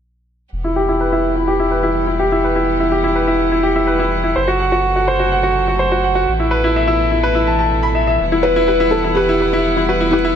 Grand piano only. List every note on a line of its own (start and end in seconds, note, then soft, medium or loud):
0.64 0.76 E4 medium
0.76 0.88 G4 medium
0.89 1.00 E4 medium
1.01 1.12 B4 medium
1.12 1.24 E4 medium
1.36 1.48 E4 medium
1.48 1.59 G4 medium
1.59 1.71 E4 medium
1.71 1.83 B4 medium
1.83 1.95 E4 medium
2.07 2.19 E4 medium
2.19 2.31 G4 medium
2.32 2.44 E4 medium
2.44 2.56 B4 medium
2.56 2.67 E4 medium
2.80 2.92 E4 medium
2.92 3.03 G4 medium
3.04 3.15 E4 medium
3.15 3.27 B4 medium
3.27 3.39 E4 medium
3.52 3.63 E4 medium
3.63 3.75 G4 medium
3.76 3.87 E4 medium
3.87 3.99 B4 medium
3.99 4.11 E4 medium
4.24 4.35 E4 medium
4.36 4.47 C5 medium
4.48 4.59 F#4 medium
4.60 4.71 F#5 medium
4.72 4.84 F#4 medium
4.96 5.07 F#4 medium
5.08 5.19 C5 medium
5.19 5.31 F#4 medium
5.32 5.43 F#5 medium
5.43 5.55 F#4 medium
5.68 5.79 F#4 medium
5.79 5.91 C5 medium
5.92 6.03 F#4 medium
6.04 6.16 F#5 medium
6.15 6.27 F#4 medium
6.40 6.51 E4 medium
6.51 6.63 B4 medium
6.64 6.76 E4 medium
6.76 6.88 E5 medium
6.87 6.99 E4 medium
7.12 7.23 E4 medium
7.23 7.35 B4 medium
7.35 7.47 E4 medium
7.47 7.54 A5 medium
7.59 7.71 A5 medium
7.83 7.95 B5 medium
7.95 8.06 E5 medium
8.07 8.19 E5 medium
8.32 8.44 E4 medium
8.44 8.56 B4 medium
8.56 8.68 E4 medium
8.68 8.79 B4 medium
8.80 8.92 E4 medium
9.04 9.16 E4 medium
9.17 9.28 B4 medium
9.29 9.40 E4 medium
9.42 9.52 B4 medium
9.53 9.64 E4 medium
9.77 9.88 E4 medium
9.89 10.00 B4 medium
10.01 10.12 E4 medium
10.13 10.24 B4 medium
10.24 10.36 E4 medium